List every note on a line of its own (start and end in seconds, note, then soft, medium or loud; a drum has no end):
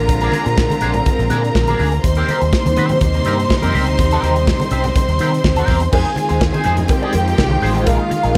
0.00 2.00 D3 medium
0.00 2.00 G#3 medium
0.00 2.00 F4 medium
0.00 2.00 A#4 medium
0.00 2.00 A#5 medium
0.08 0.27 A#1 medium
0.08 2.02 C4 medium
0.08 muted clean electric guitar stroke soft
0.08 kick loud
0.08 closed hi-hat medium
0.08 muted conga soft
0.21 0.31 D4 medium
0.21 0.33 G#4 medium
0.21 0.34 A#4 medium
0.21 closed hi-hat soft
0.21 muted conga soft
0.32 0.47 D4 medium
0.32 0.46 G#4 medium
0.32 0.45 A#4 medium
0.32 closed hi-hat medium
0.32 high conga medium
0.46 0.65 A#2 medium
0.46 muted clean electric guitar stroke medium
0.46 closed hi-hat soft
0.58 kick loud
0.58 snare loud
0.58 muted conga soft
0.70 muted clean electric guitar stroke soft
0.70 closed hi-hat medium
0.70 muted conga soft
0.70 high conga medium
0.81 1.00 A#1 medium
0.81 0.99 D4 medium
0.81 0.95 G#4 medium
0.81 0.95 C5 medium
0.81 closed hi-hat medium
0.81 low conga medium
0.94 muted clean electric guitar stroke soft
0.94 closed hi-hat soft
0.94 low conga medium
1.06 muted clean electric guitar stroke soft
1.06 kick loud
1.06 closed hi-hat medium
1.06 high conga medium
1.19 1.28 A#1 loud
1.19 muted clean electric guitar stroke soft
1.19 closed hi-hat soft
1.19 muted conga soft
1.30 1.50 A#2 medium
1.30 1.47 D4 medium
1.30 1.43 G#4 medium
1.30 1.42 A#4 medium
1.30 closed hi-hat medium
1.30 high conga medium
1.43 muted clean electric guitar stroke soft
1.43 closed hi-hat soft
1.55 1.74 A#1 medium
1.55 muted clean electric guitar stroke soft
1.55 kick medium
1.55 snare loud
1.55 high conga medium
1.67 1.78 D4 medium
1.67 1.80 G#4 medium
1.67 1.80 A#4 medium
1.67 closed hi-hat soft
1.67 muted conga soft
1.67 high conga medium
1.79 1.98 D2 medium
1.79 1.93 D4 medium
1.79 1.93 G#4 medium
1.79 1.92 A#4 medium
1.79 open hi-hat medium
1.79 low conga medium
1.92 muted clean electric guitar stroke soft
1.92 closed hi-hat soft
2.04 2.22 D#2 loud
2.04 5.89 C3 medium
2.04 5.89 G3 medium
2.04 3.97 A#3 medium
2.04 5.89 D#4 medium
2.04 5.88 C5 medium
2.04 5.89 C6 medium
2.04 muted clean electric guitar stroke soft
2.04 kick medium
2.04 closed hi-hat medium
2.04 muted conga soft
2.15 2.28 C4 medium
2.15 2.29 G4 medium
2.15 2.29 A#4 medium
2.15 closed hi-hat soft
2.15 muted conga soft
2.28 2.42 C4 medium
2.28 2.42 G4 medium
2.28 2.41 A#4 medium
2.28 closed hi-hat medium
2.28 high conga medium
2.41 2.50 D#2 medium
2.41 muted clean electric guitar stroke soft
2.41 closed hi-hat soft
2.53 kick loud
2.53 snare loud
2.53 muted conga soft
2.65 2.74 D#2 loud
2.65 muted clean electric guitar stroke soft
2.65 closed hi-hat medium
2.65 high conga medium
2.76 2.96 D#3 loud
2.76 2.97 C4 medium
2.76 2.91 G4 medium
2.76 2.90 C5 medium
2.76 closed hi-hat medium
2.76 low conga medium
2.89 muted clean electric guitar stroke soft
2.89 closed hi-hat soft
2.89 low conga medium
3.01 3.20 D#2 loud
3.01 muted clean electric guitar stroke soft
3.01 kick loud
3.01 closed hi-hat medium
3.01 muted conga soft
3.01 high conga medium
3.14 muted clean electric guitar stroke medium
3.14 closed hi-hat soft
3.14 muted conga soft
3.24 3.44 G2 medium
3.24 3.42 C4 medium
3.24 3.39 G4 medium
3.24 3.37 A#4 loud
3.24 closed hi-hat medium
3.24 high conga medium
3.38 muted clean electric guitar stroke medium
3.38 closed hi-hat soft
3.49 muted clean electric guitar stroke soft
3.49 kick medium
3.49 snare medium
3.49 muted conga soft
3.49 high conga medium
3.61 3.72 F2 medium
3.61 3.72 C4 medium
3.61 3.73 G4 medium
3.61 3.75 A#4 medium
3.61 closed hi-hat soft
3.61 high conga medium
3.73 3.84 C#2 medium
3.73 3.87 C4 medium
3.73 3.87 G4 medium
3.73 3.86 A#4 medium
3.73 open hi-hat medium
3.73 low conga medium
3.87 3.96 D2 medium
3.87 muted clean electric guitar stroke soft
3.87 closed hi-hat soft
3.98 4.17 D#2 loud
3.98 5.91 C4 medium
3.98 muted clean electric guitar stroke soft
3.98 kick loud
3.98 closed hi-hat medium
3.98 muted conga soft
4.11 4.22 C4 medium
4.11 4.23 G4 medium
4.11 4.24 A#4 loud
4.11 closed hi-hat soft
4.11 muted conga soft
4.22 4.51 D#2 loud
4.22 4.36 C4 medium
4.22 4.37 G4 medium
4.22 4.36 A#4 medium
4.22 closed hi-hat medium
4.22 high conga medium
4.36 muted clean electric guitar stroke medium
4.36 closed hi-hat soft
4.47 kick loud
4.47 snare loud
4.60 muted clean electric guitar stroke soft
4.60 closed hi-hat medium
4.60 muted conga soft
4.60 high conga medium
4.71 4.90 C2 medium
4.71 4.88 C4 medium
4.71 4.86 G4 medium
4.71 4.85 C5 medium
4.71 closed hi-hat medium
4.71 low conga medium
4.84 muted clean electric guitar stroke soft
4.84 closed hi-hat medium
4.84 low conga medium
4.96 muted clean electric guitar stroke soft
4.96 kick loud
4.96 closed hi-hat medium
4.96 muted conga soft
4.96 high conga medium
5.09 5.17 D#2 loud
5.09 muted clean electric guitar stroke soft
5.09 closed hi-hat soft
5.09 muted conga soft
5.19 5.38 D#3 medium
5.19 5.37 C4 medium
5.19 5.32 G4 medium
5.19 5.31 A#4 medium
5.19 closed hi-hat medium
5.19 high conga medium
5.33 muted clean electric guitar stroke medium
5.33 closed hi-hat soft
5.44 5.63 D#2 medium
5.44 muted clean electric guitar stroke soft
5.44 kick loud
5.44 snare loud
5.44 muted conga soft
5.44 high conga medium
5.56 5.67 C4 medium
5.56 5.68 G4 medium
5.56 5.69 A#4 medium
5.56 closed hi-hat soft
5.56 muted conga soft
5.56 high conga medium
5.67 5.86 E2 medium
5.67 5.82 C4 medium
5.67 5.82 G4 medium
5.67 5.81 A#4 medium
5.67 kick medium
5.67 snare soft
5.67 open hi-hat medium
5.67 low conga medium
5.80 muted clean electric guitar stroke soft
5.80 closed hi-hat medium
5.92 6.02 F2 loud
5.92 8.38 D#3 medium
5.92 8.38 G#3 medium
5.92 7.85 C4 medium
5.92 6.10 D#4 loud
5.92 8.38 F4 medium
5.92 6.88 G#4 medium
5.92 6.05 G#4 medium
5.92 6.04 C5 medium
5.92 6.88 G#5 medium
5.92 kick loud
5.92 crash loud
5.92 cowbell medium
5.92 muted conga soft
6.05 muted clean electric guitar stroke soft
6.05 muted conga soft
6.16 muted clean electric guitar stroke soft
6.16 closed hi-hat medium
6.16 high conga medium
6.29 6.49 D#2 medium
6.29 6.40 D#4 soft
6.29 6.40 G#4 medium
6.29 6.41 C5 medium
6.29 closed hi-hat medium
6.41 muted clean electric guitar stroke soft
6.41 kick loud
6.41 snare loud
6.41 cowbell medium
6.41 muted conga soft
6.53 6.63 D#4 medium
6.53 6.64 G#4 medium
6.53 6.65 C5 medium
6.53 closed hi-hat soft
6.53 muted conga soft
6.53 high conga medium
6.64 6.84 F2 medium
6.64 6.82 D#4 medium
6.64 6.78 G#4 medium
6.64 6.77 C5 medium
6.64 closed hi-hat medium
6.64 low conga medium
6.77 muted clean electric guitar stroke soft
6.77 closed hi-hat soft
6.77 low conga loud
6.88 7.85 G4 medium
6.88 7.85 G5 loud
6.88 muted clean electric guitar stroke soft
6.88 kick loud
6.88 closed hi-hat medium
6.88 cowbell medium
6.88 muted conga soft
6.88 high conga medium
7.02 7.13 D#4 medium
7.02 7.13 G#4 medium
7.02 7.15 D5 medium
7.02 muted conga soft
7.13 7.33 F2 loud
7.13 muted clean electric guitar stroke soft
7.13 closed hi-hat medium
7.13 cowbell medium
7.13 high conga medium
7.27 muted clean electric guitar stroke medium
7.27 closed hi-hat soft
7.38 7.56 C2 medium
7.38 muted clean electric guitar stroke soft
7.38 kick medium
7.38 snare loud
7.38 cowbell medium
7.38 high conga medium
7.50 muted clean electric guitar stroke soft
7.50 muted conga soft
7.50 high conga medium
7.62 7.87 A1 loud
7.62 7.75 D#4 medium
7.62 7.74 G#4 medium
7.62 7.73 C5 loud
7.62 open hi-hat medium
7.62 low conga medium
7.74 7.86 D#4 medium
7.74 7.86 G#4 medium
7.74 7.87 C5 medium
7.74 closed hi-hat soft
7.85 7.97 A#1 loud
7.85 8.38 A#3 medium
7.85 8.04 D#4 medium
7.85 8.38 F4 medium
7.85 8.00 G#4 medium
7.85 7.98 A#4 medium
7.85 8.38 F5 medium
7.85 kick loud
7.85 closed hi-hat medium
7.85 cowbell medium
7.85 muted conga soft
7.99 muted clean electric guitar stroke medium
7.99 muted conga soft
8.10 muted clean electric guitar stroke soft
8.10 closed hi-hat medium
8.10 high conga medium
8.23 8.38 A#1 medium
8.23 8.33 D#4 medium
8.23 8.33 G#4 medium
8.23 8.34 A#4 medium
8.23 closed hi-hat medium